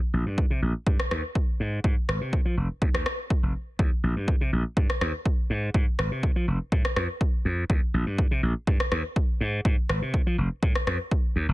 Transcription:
0.13 A#1
0.26 G2
0.38 kick
0.50 C3
0.62 A#1
0.87 G2, kick
1.00 cross-stick
1.11 D#2, cross-stick
1.35 kick
1.60 G#2
1.84 G#2, kick
2.08 G#1, cross-stick
2.21 C3
2.33 kick
2.45 F3
2.57 F1
2.82 D#2, kick
2.94 D#2, cross-stick
3.06 cross-stick
3.30 kick
3.43 F1
3.79 D#2, kick
4.03 A#1
4.16 G2
4.28 kick
4.41 C3
4.53 A#1
4.77 G2, kick
4.90 cross-stick
5.01 D#2, cross-stick
5.26 kick
5.50 G#2
5.74 G#2, kick
5.99 G#1, cross-stick
6.12 C3
6.23 kick
6.36 F3
6.48 F1
6.72 A2, kick
6.85 cross-stick
6.96 F2, cross-stick
7.21 kick
7.45 F2
7.70 D#2, kick
7.94 A#1
8.06 G2
8.18 kick
8.31 C3
8.43 A#1
8.67 G2, kick
8.80 cross-stick
8.92 D#2, cross-stick
9.16 kick
9.40 G#2
9.65 G#2, kick
9.89 G#1, cross-stick
10.02 C3
10.14 kick
10.27 F3
10.38 F1
10.62 A2, kick
10.75 cross-stick
10.87 F2, cross-stick
11.11 kick
11.36 D#2
11.48 F1

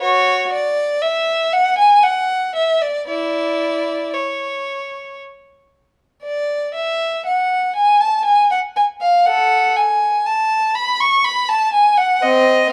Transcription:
0.02 F#4 C#5
0.52 D5
1.02 E5
1.53 F#5
1.78 G#5
2.03 F#5
2.55 E5
2.82 D5
3.08 E4 D5
4.14 C#5
6.23 D5
6.74 E5
7.26 F#5
7.75 G#5
8.01 A5
8.25 G#5
8.51 F#5
8.76 G#5
9.02 F5
9.26 A4 F#5
9.76 G#5
10.26 A5
10.75 B5
11.00 C#6
11.24 B5
11.49 A5
11.73 G#5
11.97 F#5
12.22 C4 D#5

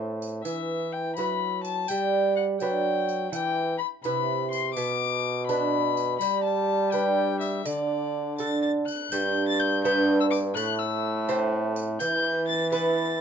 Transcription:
Already playing: A2 A3 C4 C5
0.22 tambourine
0.43 E3 E5, tambourine
0.92 G5
1.16 F#3 E4 B4 B5, tambourine
1.63 A5, tambourine
1.88 G3 G5, tambourine
2.36 F#5
2.60 F#3 D4 B4 G5, tambourine
3.09 tambourine
3.32 E3 G5, tambourine
3.78 B5
4.03 C3 E4 B4 B5, tambourine
4.51 C6, tambourine
4.74 B2 D6, tambourine
5.47 D4 B4 B5, tambourine
5.97 tambourine
6.19 G3 B5, tambourine
6.43 A5
6.92 D4 B4 G5, tambourine
7.40 E5, tambourine
7.65 D3 D5, tambourine
8.38 D4 A4 A6, tambourine
8.62 A6
8.87 F#6, tambourine
9.11 G2 G6, tambourine
9.48 A6
9.60 G6
9.84 B3 D4 B4 G6, tambourine
10.21 E6
10.30 D6, tambourine
10.54 A2 F#6, tambourine
10.79 E6
11.28 A3 C4 C5, tambourine
11.76 tambourine
11.99 E3 G6, tambourine
12.48 A6
12.72 B3 E4 B4 A6, tambourine

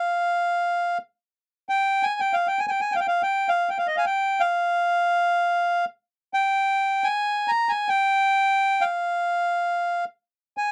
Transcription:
Already playing: F5
1.69 G5
2.03 G#5
2.20 G5
2.33 F5
2.47 G5
2.59 G#5
2.67 G5 G#5
2.81 G#5
2.92 G5
2.96 F5 G5
3.08 F5
3.23 G5
3.49 F5
3.69 G5
3.78 F5
3.87 D#5
3.96 F5 G#5
4.06 G5
4.40 F5
6.34 G5
7.04 G#5
7.48 A#5
7.69 G#5
7.89 G5
8.81 F5
10.57 G#5

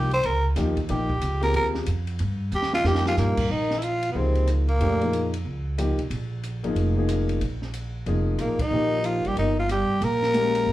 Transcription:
Already playing: C2
0.11 C5, ride
0.23 C#2 A#4, ride
0.56 D#2 F3 A#3 D#4 G4, snare, hi-hat pedal, ride
0.77 kick, ride
0.88 A#1 F3 A#3 D#4 G4, ride
1.10 kick
1.21 C#2, hi-hat pedal, ride
1.41 C4 F4 G4 G#4 A#4, ride
1.54 D#2 A#4, ride
1.75 snare
1.86 F2, hi-hat pedal, ride
2.07 ride
2.19 G2, ride
2.52 D#2 G4, hi-hat pedal
2.62 snare
2.73 F4, snare
2.84 F2 F3 A#3 D#4 G4, snare
2.95 snare
3.06 F4, snare
3.16 G2 A#2 A#3, snare, hi-hat pedal
3.37 kick, crash
3.48 A#1 D#3 D#4
3.71 snare
3.77 E3 E4
3.82 F3 F4, hi-hat pedal, ride
4.03 ride
4.09 B2 B3
4.15 C#2 C3 F3 A#3 C4 D#4 G#4
4.35 ride
4.47 cross-stick, hi-hat pedal, ride
4.68 A#2 A#3, ride
4.81 F2 E3 A3 D4 G4, ride
5.00 F3 A#3 D#4 G#4, ride
5.13 hi-hat pedal, ride
5.34 ride
5.45 C#2
5.78 F3 A#3 D#4 G4, cross-stick, hi-hat pedal, ride
5.99 B1, ride
6.10 A#1, ride
6.44 hi-hat pedal, ride
6.63 G#1 F3 A#3 D#4 G#4, ride
6.75 F1, ride
6.96 F3 A#3 D#4 G#4
7.09 cross-stick, hi-hat pedal, ride
7.29 ride
7.41 A#1, ride
7.62 snare
7.74 hi-hat pedal, ride
8.06 F1 F3 A#3 D#4 G#4, ride
8.38 A1 A#2 A#3, cross-stick, hi-hat pedal, ride
8.59 D#3 D#4, kick, ride
8.71 A#1 F3 A#3 D#4 G4
9.04 F3 F4, hi-hat pedal, ride
9.25 A1 G3 G4, ride
9.37 G1 D#3 D#4, ride
9.59 F3 F4
9.69 G3 G4, cross-stick, hi-hat pedal, ride
9.90 muted upright bass stroke
10.01 A#1 A#3 A#4, ride
10.23 snare
10.34 G#3 C#4 G4 A#4, hi-hat pedal, ride
10.55 ride
10.67 G1

